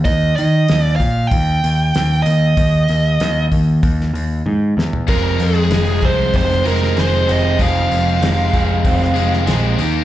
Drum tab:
HH |o-o-o-o-o-o-o-o-|o-o-o-o-o-o-----|o-o-o-o-o-o-o-o-|o-o-o-o-o-o-o-o-|
SD |----o-------o---|----o----o----o-|----o----o-oo---|----o----o-oo---|
T1 |----------------|------------o---|----------------|----------------|
FT |----------------|---------------o|----------------|----------------|
BD |o-----o-o-------|o-----o-o-------|o-----o-o-------|o-----o-o-------|